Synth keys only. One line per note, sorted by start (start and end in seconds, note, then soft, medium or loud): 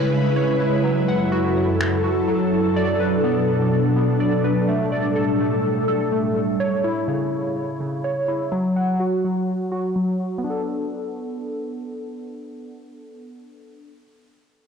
0.00 0.11 C#3 medium
0.00 0.59 E4 medium
0.00 0.35 C#5 loud
0.12 0.84 C#3 medium
0.36 0.84 C#5 medium
0.60 0.84 E4 medium
0.84 1.55 F#3 medium
1.08 2.52 F#5 medium
1.32 2.02 F#4 medium
1.56 2.27 F#3 medium
2.04 2.76 F#4 medium
2.28 2.76 F#3 medium
2.76 4.19 D5 loud
3.00 4.43 B4 medium
3.24 3.95 B3 medium
3.96 4.68 B3 medium
4.20 4.68 D5 medium
4.44 4.68 B4 medium
4.68 5.39 A3 medium
4.92 6.36 D5 medium
5.16 5.87 A4 medium
5.40 6.11 A3 medium
5.88 6.60 A4 medium
6.12 6.60 A3 medium
6.60 8.03 C#5 loud
6.84 8.27 E4 medium
7.08 7.79 C#3 medium
7.80 8.52 C#3 medium
8.04 8.52 C#5 medium
8.28 8.52 E4 medium
8.52 9.23 F#3 medium
8.76 10.20 F#5 medium
9.00 9.70 F#4 medium
9.24 9.94 F#3 medium
9.72 10.44 F#4 medium
9.96 10.44 F#3 medium
10.38 13.83 B3 medium
10.44 13.89 D4 medium
10.50 13.95 A4 medium